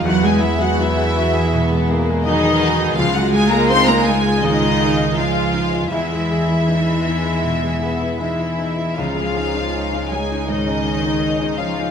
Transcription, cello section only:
0.04 F#3
0.23 G#3
0.41 E3
0.58 F#3
0.77 E3
2.23 D#3
2.96 F3
3.13 F#3
3.32 G#3
3.50 A#3
3.69 C4
3.87 A#3
4.06 G#3
4.42 D#3
5.16 F3
5.92 E3
8.19 E3
8.98 F3
10.11 G#3
10.48 D#3
11.57 F3

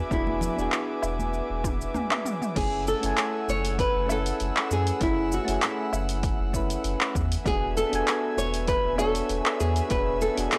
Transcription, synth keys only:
Already playing: B3 D4 F#4 G#4
0.10 B3 D4 F#4 G#4
0.56 B3 D4 F#4
0.61 G#4
2.55 A3 C#4 E4 G#4
3.00 A3 C#4 E4
3.06 G#5
4.07 A3 C#4 E4
4.12 B4
5.00 A3 C#4 E4 G#4
5.45 A3 C#4 E4
5.51 G#4
6.53 A3 C#4 E4 B4
7.44 B3 D4 F#4 G#4
7.90 B3 D4 F#4
7.95 G#5
8.96 B3 D4 F#4
9.01 C#5
9.89 B3 D4 F#4 G#4
10.35 B3 D4 F#4
10.40 G#4

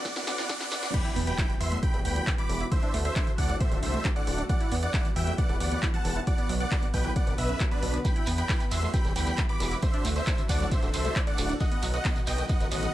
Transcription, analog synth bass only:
0.16 F#1
0.27 A1
0.72 B1
1.16 E2
1.60 E2
1.94 E1
2.05 D2
2.49 E1
2.94 D2
3.38 D2
3.72 D1
3.83 C2
4.27 D1
4.72 E2
5.16 E2
5.49 E1
5.60 D2
6.05 E1
6.49 B1
6.94 B1
7.27 F#1
7.38 B1
7.83 B1
8.27 E2
8.72 E2
9.05 E1
9.16 D2
9.60 E1
10.05 D2
10.49 D2
10.83 D1
10.94 C2
11.38 D1
11.83 B1
12.27 B1
12.61 F#1
12.72 A1

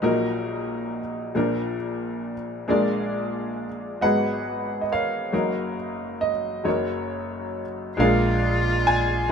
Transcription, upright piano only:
Already playing: G#4 D#5
0.02 A#1 A#2 F#3 D#4 A#4
1.35 A#1 A#2 F3 D4 A#4
2.68 A#1 A#2 G#3 D4 F4 G#4 A#4 D5
4.01 G#1 G#2 F#3 B3 G#4 B4 D#5 F#5
4.81 D#5
4.92 A#4 C#5 F5
5.32 F#1 F#2 F#3 D#4 A#4
6.21 D#5
6.64 F#1 F#2 F#3 D#4 C#5
6.68 A#4 C#5
7.97 A#1 A#2 G#3 D4 G#4 A#4 D5 F5
8.87 G#5
9.29 G#3

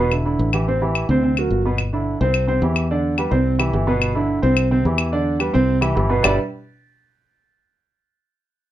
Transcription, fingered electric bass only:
Already playing: E1
0.39 A1
1.09 D2
1.50 G1
2.21 C2
2.62 E2
3.32 C2
3.73 G1
4.43 C2
4.85 E2
5.55 C2
5.97 G1
6.24 G1

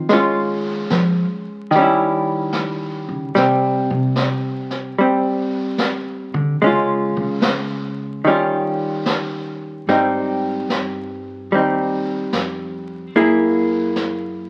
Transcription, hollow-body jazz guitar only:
Already playing: C4 D#4
0.09 G#3 C#4
0.14 F4
1.71 D#3
1.76 G3 C#4
1.82 E4
3.35 G3 C4
4.98 G3 C4
6.62 G#3 C#4
6.66 F4
8.24 D#3 G3 C#4
8.30 F4
9.89 G3 C4 D#4
11.52 G3 C4 D#4
13.16 A#3 E4 G#4

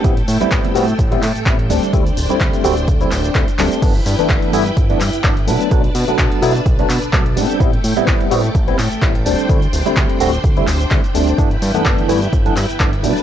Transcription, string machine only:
Already playing: A3 A4 G5
1.69 D4 C5 G5
3.82 E4 B4 G5
5.48 D4 B4 A5
7.37 A3 A4 G5
9.26 D4 C5
11.38 E4 B4
13.03 D4 A5

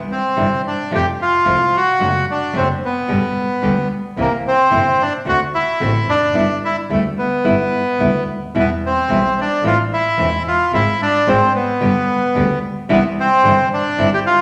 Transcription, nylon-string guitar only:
0.36 C3 E3 G3 D4 E4
0.91 C3 F3 A3 C4 F4
1.45 C3 F3 A3 C4 F4
2.00 C3 F#3 A3 D4 F#4
2.53 C3 F#3 A3 D4 F#4
3.08 B2 D3 G3 B3 G4
3.62 B2 D3 G3 B3 G4
4.17 C3 E3 A#3 C4 E4
4.70 C3 E3 A#3 C4 E4
5.25 D3 A3 C4 F#4
5.80 D3 A3 C4 F#4
6.34 G3 B3 E4
6.90 G3 B3 E4
7.44 G3 B3 E4
7.99 G3 B3 E4
8.55 B2 E3 G3 B3 E4
9.09 B2 E3 G3 B3 E4
9.64 E3 A3 C4 E4
10.17 E3 A3 C4 E4
10.73 G#3 C4 F4
11.27 G#3 C4 F4
11.81 D3 G3 B3 G4
12.35 D3 G3 B3 G4
12.89 C3 E3 G3 D4 E4
13.43 C3 E3 G3 D4 E4
13.98 G3 C4 E4

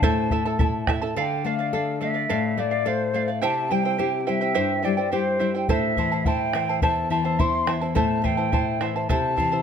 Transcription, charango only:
0.03 E4 A4 C5 E5 A5
0.31 E4 A4 E5 A5
0.45 E4 A4 A5
0.59 E4 A4 E5 A5
0.88 E4 A4 E5 A5
1.02 E4 A4 A5
1.17 A4 D5 F5
1.45 A4 D5 F5
1.59 D5 F5
1.73 A4 D5 F5
2.01 A4 D5 F5
2.14 D5 F5
2.29 A4 D5 F5
2.57 A4 D5 F5
2.71 D5 F5
2.85 A4 D5 F5
3.13 A4 D5 F5
3.28 D5 F5
3.42 E4 G4 C5 E5 G5
3.70 E4 C5 E5 G5
3.85 E4 C5 G5
3.98 E4 C5 E5 G5
4.27 E4 C5 E5 G5
4.41 E4 C5 G5
4.54 E4 G4 C5 E5 G5
4.83 E4 C5 E5 G5
4.97 E4 C5 G5
5.12 E4 C5 E5 G5
5.39 E4 C5 E5 G5
5.55 E4 C5 G5
5.69 E4 A4 C5 E5 A5
5.97 E4 C5 E5 A5
6.12 E4 C5 A5
6.26 E4 C5 E5 A5
6.54 E4 C5 E5 A5
6.69 E4 C5 A5
6.83 E4 A4 C5 E5 A5
7.11 E4 C5 E5 A5
7.25 E4 C5 A5
7.39 E4 C5 E5 A5
7.67 E4 C5 E5 A5
7.81 E4 C5 A5
7.95 E4 A4 C5 E5 A5
8.24 E4 C5 E5 A5
8.37 E4 C5 A5
8.52 E4 C5 E5 A5
8.81 E4 C5 E5 A5
8.96 E4 C5 A5
9.09 E4 A4 C5 E5 A5
9.36 E4 C5 E5 A5
9.52 E4 C5 A5

